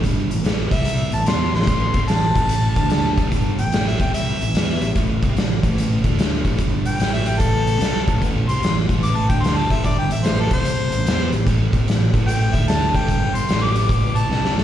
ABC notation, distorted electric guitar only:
X:1
M:4/4
L:1/8
Q:"Swing" 1/4=147
K:Am
V:1 name="Distorted electric guitar" clef=bass
[G,,D,G,] [A,,E,] [A,,E,A,] [C,G,C]2 [A,,E,] [E,B,E] [A,,E,] | [A,,E,A,] [C,G,C] [A,,E,] [A,,E,A,]2 [D,A,D]2 [A,,E,A,] | [G,,D,G,] [A,,E,] [A,,E,A,] [C,G,C]2 [A,,E,] [E,B,E] [A,,E,] | [A,,E,A,] [C,G,C] [A,,E,] [A,,E,A,]2 [D,A,D]2 [A,,E,A,] |
[G,,D,G,]2 [A,,E,A,]4 [C,G,C] [A,,E,A,] | [A,,E,A,] [C,G,C] [A,,E,] [A,,E,A,]2 [D,A,D]2 [A,,E,A,] | [G,,D,G,] [A,,E,] [A,,E,A,] [C,G,C]2 [A,,E,] [E,B,E] [A,,E,] | [A,,E,A,] [C,G,C] [A,,E,] [A,,E,A,]2 [D,A,D]2 [A,,E,A,] |
[G,,D,G,]2 [A,,E,A,]4 [C,G,C] [A,,E,A,] |]